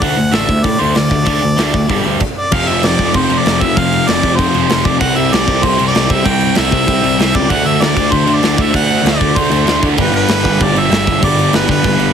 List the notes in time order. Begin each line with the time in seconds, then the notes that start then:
0.01 D2 D3 A3 D4 F#5, kick, open hi-hat
0.17 D2 D3 A3
0.31 A1 D3 A3 D4 E5, snare, open hi-hat
0.47 D2 D3 A3, kick
0.64 A2 D3 A3 D5, kick, open hi-hat
0.79 D2 D3 A3 D4 C5
0.95 D2 D3 A3 D5, snare, open hi-hat
1.11 D2 D3 A3, kick
1.25 D2 D3 A3 D4, kick, open hi-hat
1.42 D2 D3 A3
1.58 D2 D3 A3 D4, snare, open hi-hat
1.74 D2 D3 A3, kick
1.89 G1 G2 D3 G3, kick, open hi-hat
2.06 D2 G2 D3 G3
2.20 kick, crash
2.37 D5
2.52 F1 F2 C3 F3 F5, kick, crash
2.67 F1 E5, crash
2.83 F1 F2 C3 F3 D5, snare, crash
2.98 F1 F2 C3 F3, kick, crash
3.14 F1 F2 C3 F3 C5, kick, crash
3.29 F1 F2 C3 F3, crash
3.38 D5
3.45 F1 F2 C3 F3, snare, crash
3.61 F1 F2 C3 F3 E5, kick, crash
3.76 F1 F2 C3 F3 F5, kick, crash
3.92 crash
4.07 F1 F2 C3 F3 D5, snare, crash
4.23 F1 F2 C3 F3, kick, crash
4.36 F1 F2 C3 F3 C5, kick, crash
4.54 F1 F2 C3 F3, crash
4.68 F1 F2 C3 F3, snare, crash
4.85 F1 F2 C3 F3 D5, kick, crash
4.99 C2 C3 G3 C4 F#5, kick, crash
5.16 C2 E5, crash
5.31 C2 C3 G3 C4 D5, snare, crash
5.47 C2 C3 G3 C4, kick, crash
5.62 C2 C3 G3 C4 C5, kick, crash
5.78 C2 C3 G3 C4, crash
5.87 D5
5.92 C2 C3 G3 C4, snare, crash
6.09 C2 C3 G3 C4 E5, kick, crash
6.24 C2 C3 G3 C4 G5, kick, crash
6.41 crash
6.55 C2 C3 G3 C4 E5, snare, crash
6.72 C2 C3 G3 C4, kick, crash
6.87 C2 C3 G3 C4, kick, crash
7.02 C2 C3 G3 C4, crash
7.17 C2 C3 G3 C4, snare, crash
7.34 C#2 C3 G3 C4 D5, kick, crash
7.48 D2 D3 A3 D4 F#5, kick, crash
7.65 D2 E5, crash
7.80 D2 D3 A3 D4 D5, snare, crash
7.97 D2 D3 A3 D4, kick, crash
8.12 D2 D3 A3 D4 C5, kick, crash
8.27 D2 D3 A3 D4, crash
8.35 D5
8.41 D2 D3 A3 D4, snare, crash
8.58 D2 D3 A3 D4 E5, kick, crash
8.73 D2 D3 A3 D4 F#5, kick, crash
8.90 crash
9.03 D2 D3 A3 D4 D5, snare, crash
9.20 D2 D3 A3 D4, kick, crash
9.35 D2 D3 A3 D4 C5, kick, crash
9.51 D2 D3 A3 D4, crash
9.65 D2 D3 A3 D4, snare, crash
9.69 D4
9.82 D2 D3 A3 D4, kick, crash
9.97 G1 G2 D3 G3 B4, kick, crash
10.12 G1 B4, crash
10.28 G1 G2 D3 G3, snare, crash
10.44 G1 G2 D3 G3, kick, crash
10.59 G1 G2 D3 G3 D5, kick, crash
10.75 G1 G2 D3 G3, crash
10.79 E5
10.91 G1 G2 D3 G3, snare, crash
11.07 G1 G2 D3 G3, kick, crash
11.21 G1 G2 D3 G3 D5, kick, crash
11.39 crash
11.53 G1 G2 D3 G3 B4, snare, crash
11.68 G1 G2 D3 G3 B4, kick, crash
11.83 G1 G2 D3 G3, kick, crash
11.98 G1 G2 D3 G3, crash